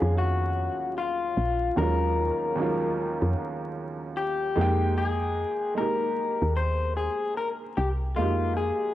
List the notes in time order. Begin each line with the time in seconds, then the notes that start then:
Already playing: D#2 F3 F#3 G#3 C#4 F4 F#4 G#4 F5
0.02 F2
0.18 F#4
0.98 F4
1.37 A#1
1.76 D#2 F#3 G#3 A#4
1.80 C#4 F4
2.55 D#2 F#3 G#3
2.60 C#4 F4
3.22 F2
4.17 G4
4.55 F2 G#3 A#3 D#4
4.61 G5
4.98 G#4
5.75 G#3 A#3 A#4
5.79 D#4 G4
6.42 D#2
6.57 C5
6.97 G#4
7.37 A#4
7.77 C2 G4
8.16 F2 G#3 A#3 F4
8.20 D#4 G4
8.57 G#4